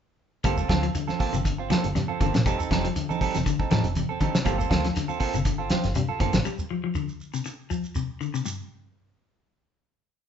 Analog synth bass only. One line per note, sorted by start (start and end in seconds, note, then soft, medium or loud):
0.44 0.65 G1 medium
0.69 0.90 D2 medium
1.33 1.74 G1 medium
1.85 1.94 G1 medium
1.95 2.06 G2 medium
2.21 2.32 G1 medium
2.35 2.44 A#1 medium
2.45 2.57 F1 medium
2.70 2.91 F1 medium
3.35 3.44 F1 medium
3.60 3.66 F1 soft
3.71 3.82 A1 medium
3.84 4.04 F1 medium
4.46 4.66 G1 medium
4.71 4.91 D2 medium
5.34 5.75 G1 medium
5.85 5.94 G1 medium
5.96 6.07 G2 medium
6.20 6.31 G1 medium
6.34 6.43 A#1 medium